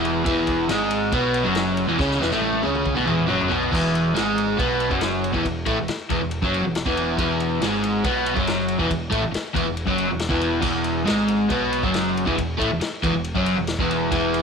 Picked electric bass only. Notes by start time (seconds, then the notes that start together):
Already playing: E1
0.26 E1
0.68 G#1
1.13 B1
1.46 F#1
1.88 E1
2.00 C#2
2.22 E1
2.31 A1
2.65 C#2
2.97 B1
3.07 E1
3.30 F#1
3.52 B1
3.73 E1
4.17 G#1
4.59 B1
4.91 F#1
5.34 E1
5.45 E1
5.67 A1
5.80 E1
5.89 muted picked electric bass stroke
6.10 E1
6.21 E1
6.43 F#1
6.64 E1
6.86 E1
7.19 E1
7.61 G#1
8.04 B1
8.37 F#1
8.79 E1
8.90 E1
9.12 A1
9.26 E1
9.37 muted picked electric bass stroke
9.55 E1
9.69 E1
9.88 F#1
10.12 E1
10.31 E1
10.63 E1
11.09 G#1
11.50 B1
11.83 F#1
12.27 E1
12.38 E1
12.59 A1
12.70 E1
12.81 muted picked electric bass stroke
13.03 E1
13.13 E1
13.35 F#1
13.58 E1
13.78 E1
14.12 E1